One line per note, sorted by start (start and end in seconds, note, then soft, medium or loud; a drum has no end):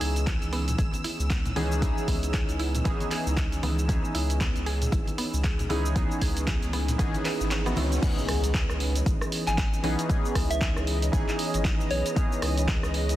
0.00 0.38 C#2 loud
0.00 1.53 E3 medium
0.00 1.53 B3 medium
0.00 1.53 C#4 medium
0.00 1.54 D#4 medium
0.00 1.54 G#4 medium
0.00 0.11 G#4 medium
0.00 8.04 E6 medium
0.00 open hi-hat loud
0.16 closed hi-hat medium
0.16 shaker medium
0.27 0.41 E4 medium
0.27 kick loud
0.27 clap loud
0.27 closed hi-hat medium
0.27 high conga medium
0.27 shaker medium
0.42 0.76 C#2 medium
0.42 closed hi-hat soft
0.42 shaker soft
0.53 0.62 B3 medium
0.53 open hi-hat medium
0.68 closed hi-hat soft
0.68 low conga medium
0.68 shaker medium
0.78 0.91 G#1 loud
0.78 0.88 G#4 medium
0.78 kick loud
0.78 closed hi-hat medium
0.78 shaker medium
0.93 closed hi-hat soft
0.93 high conga medium
0.93 shaker soft
1.04 1.19 E4 medium
1.04 open hi-hat loud
1.19 1.53 C#2 medium
1.19 shaker medium
1.30 1.40 B3 medium
1.30 kick loud
1.30 clap loud
1.30 closed hi-hat medium
1.30 shaker medium
1.45 closed hi-hat soft
1.45 low conga medium
1.45 shaker soft
1.56 1.93 C#2 loud
1.56 1.79 E3 loud
1.56 1.79 B3 medium
1.56 1.79 C#4 medium
1.56 1.79 D#4 medium
1.56 1.66 G#4 medium
1.56 1.80 G#4 loud
1.56 open hi-hat medium
1.56 high conga loud
1.72 shaker medium
1.81 2.82 E3 loud
1.81 2.82 B3 medium
1.81 2.83 C#4 medium
1.81 2.83 D#4 medium
1.81 1.96 E4 medium
1.81 2.83 G#4 loud
1.81 kick loud
1.81 closed hi-hat medium
1.81 shaker medium
1.98 shaker soft
2.08 2.45 C#2 loud
2.08 2.18 B3 medium
2.08 kick medium
2.08 open hi-hat loud
2.23 closed hi-hat medium
2.23 shaker medium
2.33 2.43 G#4 medium
2.33 kick loud
2.33 clap loud
2.33 closed hi-hat medium
2.33 high conga medium
2.33 shaker medium
2.49 2.82 C#2 medium
2.49 closed hi-hat soft
2.49 shaker soft
2.59 2.74 E4 medium
2.59 open hi-hat medium
2.75 closed hi-hat soft
2.75 low conga medium
2.75 shaker medium
2.84 2.98 G#1 loud
2.84 3.86 E3 loud
2.84 3.86 B3 medium
2.84 2.95 B3 medium
2.84 3.86 C#4 medium
2.84 3.87 D#4 medium
2.84 3.87 G#4 loud
2.84 kick loud
2.84 closed hi-hat medium
2.84 shaker medium
3.00 closed hi-hat soft
3.00 high conga medium
3.00 shaker soft
3.11 3.21 G#4 medium
3.11 clap medium
3.11 open hi-hat loud
3.26 3.60 C#2 loud
3.26 shaker medium
3.37 3.52 E4 medium
3.37 kick loud
3.37 clap loud
3.37 closed hi-hat medium
3.37 shaker medium
3.52 closed hi-hat soft
3.52 shaker soft
3.63 4.00 C#2 loud
3.63 3.73 B3 medium
3.63 open hi-hat medium
3.63 high conga medium
3.79 shaker medium
3.88 5.67 E3 medium
3.88 5.67 B3 medium
3.88 5.67 C#4 medium
3.88 5.68 D#4 medium
3.88 3.99 G#4 medium
3.88 5.68 G#4 medium
3.88 kick loud
3.88 closed hi-hat medium
3.88 riser medium
3.88 shaker medium
4.05 shaker soft
4.15 4.52 C#2 loud
4.15 4.29 E4 medium
4.15 open hi-hat loud
4.30 closed hi-hat medium
4.30 shaker medium
4.40 4.50 B3 medium
4.40 kick loud
4.40 clap loud
4.40 closed hi-hat medium
4.40 high conga medium
4.40 shaker medium
4.56 4.89 C#2 medium
4.56 closed hi-hat soft
4.56 shaker soft
4.66 4.76 G#4 medium
4.66 open hi-hat medium
4.82 closed hi-hat medium
4.82 low conga medium
4.82 shaker medium
4.92 5.05 G#1 loud
4.92 5.07 E4 medium
4.92 kick loud
4.92 closed hi-hat medium
4.92 shaker medium
5.07 closed hi-hat soft
5.07 high conga medium
5.07 shaker soft
5.18 5.28 B3 medium
5.18 open hi-hat loud
5.33 5.67 C#2 loud
5.33 shaker medium
5.44 5.54 G#4 medium
5.44 kick loud
5.44 clap loud
5.44 closed hi-hat medium
5.44 shaker medium
5.59 closed hi-hat soft
5.59 low conga medium
5.59 shaker soft
5.69 6.07 C#2 loud
5.69 5.93 E3 loud
5.69 5.93 B3 medium
5.69 5.93 C#4 medium
5.69 5.93 D#4 medium
5.69 5.84 E4 medium
5.69 5.93 G#4 loud
5.69 open hi-hat medium
5.69 high conga medium
5.86 shaker medium
5.95 6.96 E3 loud
5.95 6.96 B3 medium
5.95 6.05 B3 medium
5.95 6.97 C#4 medium
5.95 6.97 D#4 medium
5.95 6.97 G#4 loud
5.95 kick loud
5.95 closed hi-hat medium
5.95 shaker medium
6.11 shaker soft
6.22 6.59 C#2 loud
6.22 6.31 G#4 medium
6.22 kick medium
6.22 open hi-hat loud
6.37 closed hi-hat medium
6.37 shaker medium
6.47 6.62 E4 medium
6.47 kick loud
6.47 clap loud
6.47 closed hi-hat medium
6.47 high conga medium
6.47 shaker medium
6.62 6.96 C#2 medium
6.62 closed hi-hat soft
6.62 shaker soft
6.73 6.83 B3 medium
6.73 open hi-hat medium
6.88 closed hi-hat medium
6.88 low conga medium
6.88 shaker medium
6.98 7.12 G#1 loud
6.98 7.62 E3 loud
6.98 7.63 B3 medium
6.98 7.63 C#4 medium
6.98 7.63 D#4 medium
6.98 7.09 G#4 medium
6.98 7.64 G#4 loud
6.98 kick loud
6.98 closed hi-hat medium
6.98 shaker medium
7.14 closed hi-hat soft
7.14 high conga medium
7.14 shaker soft
7.25 7.35 B4 medium
7.25 clap medium
7.25 open hi-hat loud
7.40 7.74 G#1 medium
7.40 shaker medium
7.51 7.57 C#4 medium
7.51 clap loud
7.51 closed hi-hat medium
7.51 shaker medium
7.65 8.00 E3 medium
7.65 8.00 B3 medium
7.65 7.70 B3 loud
7.65 8.00 C#4 medium
7.65 8.00 D#4 medium
7.65 8.00 F#4 medium
7.65 closed hi-hat soft
7.65 shaker soft
7.76 7.99 C#2 medium
7.76 7.91 E4 medium
7.76 open hi-hat medium
7.76 high conga medium
7.92 closed hi-hat soft
7.92 shaker medium
8.02 9.81 E3 medium
8.02 13.16 E3 medium
8.02 9.81 B3 medium
8.02 9.81 C#4 medium
8.02 13.16 C#4 medium
8.02 9.81 D#4 medium
8.02 9.82 G#4 medium
8.02 13.16 B4 medium
8.02 13.16 D#5 medium
8.02 kick loud
8.02 closed hi-hat medium
8.02 crash loud
8.02 impact medium
8.02 shaker medium
8.18 shaker soft
8.28 8.65 C#2 loud
8.28 cross-stick medium
8.28 open hi-hat loud
8.44 closed hi-hat medium
8.44 shaker medium
8.54 kick loud
8.54 clap loud
8.54 closed hi-hat medium
8.54 shaker medium
8.69 9.03 C#2 medium
8.69 cross-stick medium
8.69 shaker soft
8.80 open hi-hat medium
8.95 closed hi-hat medium
8.95 shaker medium
9.06 9.19 G#1 loud
9.06 kick loud
9.06 closed hi-hat medium
9.06 shaker medium
9.21 cross-stick medium
9.21 shaker soft
9.32 open hi-hat loud
9.47 9.81 G#1 medium
9.47 9.64 G#5 medium
9.47 clap soft
9.47 closed hi-hat medium
9.47 shaker medium
9.58 kick loud
9.58 clap loud
9.58 closed hi-hat medium
9.58 shaker medium
9.74 shaker soft
9.83 9.96 B1 loud
9.83 10.07 E3 loud
9.83 10.07 B3 medium
9.83 10.07 C#4 medium
9.83 10.07 D#4 medium
9.83 10.07 G#4 loud
9.83 open hi-hat medium
9.99 closed hi-hat medium
9.99 shaker medium
10.08 11.10 E3 loud
10.08 11.10 B3 medium
10.08 11.10 C#4 medium
10.08 11.11 D#4 loud
10.08 11.11 G#4 loud
10.08 kick loud
10.08 closed hi-hat medium
10.08 shaker medium
10.25 shaker soft
10.35 10.72 C#2 loud
10.35 kick medium
10.35 cross-stick medium
10.35 open hi-hat loud
10.51 10.68 E5 loud
10.51 closed hi-hat medium
10.51 shaker medium
10.61 kick loud
10.61 clap loud
10.61 closed hi-hat medium
10.61 shaker medium
10.76 11.10 C#2 medium
10.76 cross-stick medium
10.76 shaker soft
10.87 open hi-hat loud
11.02 closed hi-hat medium
11.02 shaker medium
11.12 11.26 G#1 loud
11.12 12.13 E3 loud
11.12 12.14 B3 medium
11.12 12.14 C#4 medium
11.12 12.14 D#4 medium
11.12 12.14 G#4 loud
11.12 kick loud
11.12 closed hi-hat medium
11.12 shaker medium
11.29 clap soft
11.29 shaker soft
11.39 open hi-hat loud
11.54 11.88 G#1 loud
11.54 closed hi-hat medium
11.54 shaker medium
11.65 kick loud
11.65 clap loud
11.65 closed hi-hat soft
11.65 shaker medium
11.80 shaker soft
11.91 12.03 B1 loud
11.91 12.42 C#5 medium
11.91 open hi-hat loud
12.06 closed hi-hat medium
12.06 shaker medium
12.15 13.16 E3 medium
12.15 13.16 B3 medium
12.15 13.16 C#4 medium
12.15 13.16 D#4 medium
12.15 13.16 G#4 loud
12.15 kick loud
12.15 closed hi-hat medium
12.15 shaker medium
12.32 shaker soft
12.42 12.79 C#2 loud
12.42 cross-stick medium
12.42 open hi-hat loud
12.57 closed hi-hat medium
12.57 shaker medium
12.68 kick loud
12.68 clap loud
12.68 closed hi-hat medium
12.68 shaker medium
12.83 13.16 C#2 medium
12.83 cross-stick medium
12.83 shaker soft
12.94 open hi-hat loud
13.09 closed hi-hat medium
13.09 shaker medium